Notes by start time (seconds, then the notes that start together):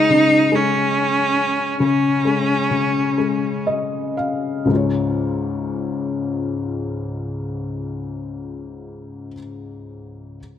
Already playing: C#3 G#3 D#4
0.10 C#3
0.52 G#3 C#4
1.80 C#3 C#4
2.25 G#3
2.71 C#3
3.18 G#3
3.67 D#5
4.17 F5
4.65 C#2 G#2
4.69 C#3 G#3
4.73 F4 C#5